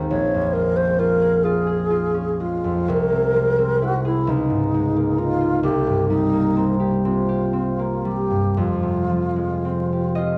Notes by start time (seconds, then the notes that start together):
Already playing: G#1 D#2 G#3 A#3 C4 D#4
0.10 A#1 C#5
0.34 F2
0.53 G#3 A#4
0.76 C#4 C5
0.99 F4 A#4
1.22 G#4
1.43 F4 G#4
1.67 G#4
1.90 F4
2.14 C#4
2.40 G#3 F4
2.64 F2
2.88 C2 A#4
3.12 C3
3.35 G#3
3.58 C4
3.82 E4 F#4
4.05 E4 G#4
4.27 C#2 D#4
4.50 G#2
4.74 G#3
4.96 A#3
5.18 D#4 F4
5.41 F4
5.63 C2 G4
5.87 G2
6.08 G3 D#4
6.33 A#3
6.57 C4
6.80 G4
7.05 C4 F4
7.29 G4
7.53 C4
7.79 A#3
8.05 G3 G4
8.30 G2
8.57 F2 F4
8.83 C3
9.09 F3
9.36 G#3
9.65 C4
9.93 G4
10.15 F4 D#5